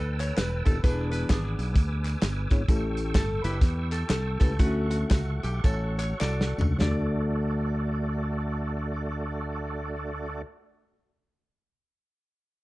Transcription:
Already playing: fingered electric bass D2, resonator guitar played with a steel bar A4 B4, tonewheel organ B4 G5 A5 E6
0.20 resonator guitar played with a steel bar C#5, clap, closed hi-hat, tambourine
0.37 fingered electric bass E1, resonator guitar played with a steel bar B4, snare, clap, closed hi-hat, tambourine
0.65 fingered electric bass D#1, tine electric piano B3 D4 E4 G4 A4, resonator guitar played with a steel bar A4, kick, closed hi-hat, tambourine
0.83 fingered electric bass E1, tine electric piano E3 B3 D4 E4 G#4 B4, resonator guitar played with a steel bar D4 G#4 B4, tonewheel organ G#5 D6, kick, closed hi-hat, tambourine
1.11 resonator guitar played with a steel bar B4, closed hi-hat, tambourine
1.30 fingered electric bass G#1, resonator guitar played with a steel bar B3 D4 G#4, kick, snare, clap, closed hi-hat, tambourine
1.59 fingered electric bass B1, closed hi-hat, tambourine
1.75 fingered electric bass D2, kick, closed hi-hat, tambourine
2.04 clap, closed hi-hat, tambourine
2.22 fingered electric bass G1, snare, clap, closed hi-hat, tambourine
2.50 fingered electric bass G#1, tine electric piano B3 D4 E4 G#4 C#5, kick, snare, closed hi-hat, tambourine
2.68 fingered electric bass A1, tine electric piano A2 A3 C#4 E4 G4 A4, tonewheel organ A4 G5 C#6, kick, closed hi-hat, tambourine
2.97 closed hi-hat, tambourine
3.15 fingered electric bass G1, resonator guitar played with a steel bar A4, kick, snare, clap, closed hi-hat, tambourine
3.44 fingered electric bass F#1, resonator guitar played with a steel bar E4 G4 B4, closed hi-hat, tambourine
3.61 fingered electric bass E2, kick, snare, closed hi-hat, tambourine
3.91 resonator guitar played with a steel bar A4, clap, closed hi-hat, tambourine
4.09 fingered electric bass C2, resonator guitar played with a steel bar A4, snare, clap, closed hi-hat, tambourine
4.40 fingered electric bass C#2, tine electric piano A3 C#4 E4 G4 B4, resonator guitar played with a steel bar A4, kick, snare, closed hi-hat, tambourine
4.59 fingered electric bass D2, tine electric piano D3 A3 C#4 E4 A4, resonator guitar played with a steel bar A3 C#4 F#4, tonewheel organ F#5, kick, closed hi-hat, tambourine
4.66 tine electric piano F#4
4.90 resonator guitar played with a steel bar F#4, closed hi-hat, tambourine
5.10 fingered electric bass C#2, resonator guitar played with a steel bar F#4, kick, snare, clap, closed hi-hat, tambourine
5.43 fingered electric bass B1, resonator guitar played with a steel bar G4, closed hi-hat, tambourine
5.64 fingered electric bass A1, resonator guitar played with a steel bar F#4 A4 C#5, kick, closed hi-hat, tambourine
5.99 resonator guitar played with a steel bar C#5, clap, closed hi-hat, tambourine
6.20 fingered electric bass C2, resonator guitar played with a steel bar F#4 A4 D5, snare, clap, tambourine
6.41 snare
6.58 fingered electric bass C#2, tine electric piano A3 C#4 D4 F#4 A4, floor tom, tambourine
6.78 tine electric piano D2 A3 D4 F#4, fingered electric bass D2, tonewheel organ A3 D4 F#4 A4 D5, resonator guitar played with a steel bar D5, snare, clap, floor tom
6.84 tine electric piano A4

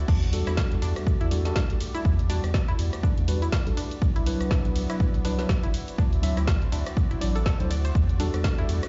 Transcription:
Already playing: analog synth pad F#4 D5
0.08 analog synth bass E2, analog synth pad G3 A3, synth arpeggio sound D4, kick, crash, cabasa
0.22 closed hi-hat
0.32 tine electric piano G3 D4 F#4 A4, open hi-hat, ride, cabasa
0.47 analog synth bass E2, synth arpeggio sound E4, cross-stick, closed hi-hat, cabasa
0.57 kick, snare, cabasa
0.72 closed hi-hat
0.82 analog synth bass E2, synth arpeggio sound D4, open hi-hat, ride, cabasa
0.96 cross-stick, closed hi-hat, cabasa
1.07 kick, cabasa
1.21 analog synth bass E2, synth arpeggio sound E4, closed hi-hat
1.31 tine electric piano G3 D4 F#4 A4, open hi-hat, ride, cabasa
1.45 tine electric piano G3 D4 F#4 A4, snare, closed hi-hat, cabasa
1.56 synth arpeggio sound D4, kick, snare, cabasa
1.70 analog synth bass B1, closed hi-hat
1.80 open hi-hat, ride, cabasa
1.95 synth arpeggio sound E4, closed hi-hat, cabasa
2.05 analog synth bass E2, kick, cabasa
2.19 closed hi-hat
2.29 tine electric piano G3 D4 F#4 D5, synth arpeggio sound D4, open hi-hat, ride, cabasa
2.44 analog synth bass E2, cross-stick, closed hi-hat, cabasa
2.54 kick, snare, cabasa
2.68 synth arpeggio sound E4, closed hi-hat
2.79 analog synth bass E2, open hi-hat, ride, cabasa
2.93 cross-stick, closed hi-hat, cabasa
3.03 synth arpeggio sound D4, kick, cabasa
3.17 analog synth bass E2, closed hi-hat
3.28 tine electric piano G3 D4 F#4 B4, open hi-hat, ride, cabasa
3.42 synth arpeggio sound E4, closed hi-hat, cabasa
3.52 kick, snare, cabasa
3.66 analog synth bass B1, tine electric piano G3 D4 F#4 A4, closed hi-hat
3.77 synth arpeggio sound D4, open hi-hat, ride, cabasa
3.91 closed hi-hat, cabasa
4.02 analog synth bass C2, analog synth pad B3 E4 F#4, kick, cabasa
4.16 synth arpeggio sound E4, closed hi-hat
4.25 tine electric piano F#3 D4 E4 B4, open hi-hat, ride, cabasa
4.40 analog synth bass C2, cross-stick, closed hi-hat, cabasa
4.51 synth arpeggio sound D4, kick, snare, cabasa
4.65 closed hi-hat
4.75 analog synth bass C2, open hi-hat, ride, cabasa
4.90 synth arpeggio sound E4, cross-stick, closed hi-hat, cabasa
5.00 kick, cabasa
5.14 analog synth bass C2, closed hi-hat
5.24 tine electric piano F#3 D4 E4 B4, synth arpeggio sound D4, open hi-hat, ride, cabasa
5.38 tine electric piano F#3 D4 E4 B4, snare, closed hi-hat, cabasa
5.49 kick, snare, cabasa
5.63 analog synth bass G1, synth arpeggio sound E4, closed hi-hat
5.74 analog synth pad C4 D5, open hi-hat, ride, cabasa
5.88 closed hi-hat, cabasa
5.98 analog synth bass D2, synth arpeggio sound D4, kick, cabasa
6.13 closed hi-hat
6.23 tine electric piano F#3 D4 E4 E5, open hi-hat, ride, cabasa
6.37 analog synth bass D2, synth arpeggio sound E4, cross-stick, closed hi-hat, cabasa
6.47 kick, snare, cabasa
6.62 closed hi-hat
6.72 analog synth bass D2, synth arpeggio sound D4, open hi-hat, ride, cabasa
6.86 cross-stick, closed hi-hat, cabasa
6.97 kick, cabasa
7.11 analog synth bass A1, synth arpeggio sound E4, closed hi-hat
7.21 tine electric piano F#3 D4 E4 D5, synth arpeggio sound D5, open hi-hat, ride, cabasa
7.36 synth arpeggio sound A4, closed hi-hat, cabasa
7.46 synth arpeggio sound A4, kick, snare, cabasa
7.60 analog synth bass D2, tine electric piano F#3 D4 E4 C5, closed hi-hat
7.71 synth arpeggio sound D5, open hi-hat, ride, cabasa
7.85 synth arpeggio sound C5, closed hi-hat, cabasa
7.95 analog synth bass E2, analog synth pad G3 A3, kick, cabasa
8.09 closed hi-hat
8.19 tine electric piano G3 D4 F#4 A4, synth arpeggio sound D4, open hi-hat, ride, cabasa
8.34 analog synth bass E2, cross-stick, closed hi-hat, cabasa
8.44 kick, snare, cabasa
8.58 synth arpeggio sound E4, closed hi-hat
8.69 analog synth bass E2, open hi-hat, ride, cabasa
8.83 cross-stick, closed hi-hat, cabasa

